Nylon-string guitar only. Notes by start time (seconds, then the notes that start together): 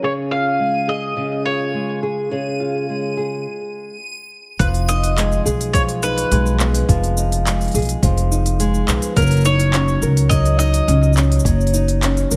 Already playing: C#4
0.02 C#3 G#4
0.31 F4
0.59 G#3
0.88 G#4
1.16 C#3
1.45 F4
1.74 G#3
2.03 G#4
2.31 C#3 G#4
2.60 F4
2.89 G#3
3.17 G#4
4.60 F3
4.89 D#4
5.17 G#3
5.45 G#4
5.74 F3
6.03 D#4
6.32 G#3
6.60 B3
6.89 F3
7.17 D#4
7.46 G#3
7.75 G#4
8.03 F3
8.31 D#4
8.60 G#3
8.88 B3
9.16 F#3
9.45 D#4
9.74 C#4
10.03 A#4
10.31 F#3
10.59 D#4
10.88 C#4
11.17 C#4
11.45 F#3
11.74 D#4
12.03 C#4
12.31 A#4